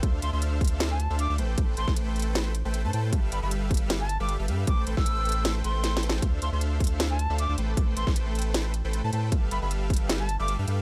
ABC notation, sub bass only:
X:1
M:4/4
L:1/16
Q:"Swing 16ths" 1/4=155
K:Am
V:1 name="Sub bass" clef=bass
D,,2 D,, D,,8 D,,2 D,, A,,,2 | A,,,2 A,,, A,,,8 A,,,2 A,, A,,2 | G,,,2 G,,, G,,,8 G,,,2 G,,, G,,2 | A,,,2 A,,, A,,,6- A,,, A,,,6 |
D,,2 D,, D,,8 D,,2 D,, A,,,2 | A,,,2 A,,, A,,,8 A,,,2 A,, A,,2 | G,,,2 G,,, G,,,8 G,,,2 G,, G,,2 |]